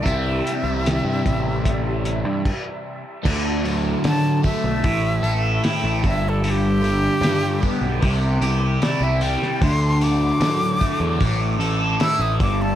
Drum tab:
CC |------------x---|x---------------|----------------|----------------|
HH |x-x-x-x-x-x-----|--o-o-o-o-o-o-o-|o-o-o-o-o-o-o-o-|o-o-o-o-o-o-o-o-|
SD |----o-----------|----o-------o---|----o-------o--o|----o-------o---|
BD |o-----o-o---o---|o-----o-o-----o-|------o-o-------|o-----o-o-----o-|